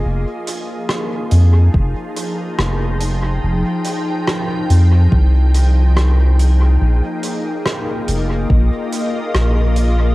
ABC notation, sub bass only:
X:1
M:4/4
L:1/8
Q:"Swing 16ths" 1/4=71
K:Fm
V:1 name="Sub bass" clef=bass
F,,, z2 F,, F,,, z F,,,2 | F,,, z2 F,, C,,4 | B,,, z2 F,,, B,,, z B,,,2 |]